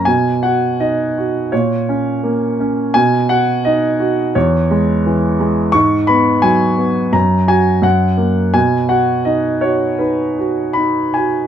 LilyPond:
\new Staff \with { instrumentName = "Grand piano" } { \time 4/4 \key b \major \tempo 4 = 84 << { gis''8 fis''8 dis''4 cis''4. r8 | gis''8 fis''8 dis''4 cis''4. r8 | cis'''8 b''8 gis''4 ais''8 gis''8 fis''4 | gis''8 fis''8 dis''8 cis''8 b'4 b''8 gis''8 | } \\ { b,8 fis'8 dis'8 fis'8 ais,8 cis'8 ais8 cis'8 | b,8 fis'8 dis'8 fis'8 e,8 gis8 e8 gis8 | gis,8 b8 fis8 b8 fis,8 fis'8 fis,8 ais8 | b,8 fis'8 dis'8 fis'8 dis'8 fis'8 dis'8 fis'8 | } >> }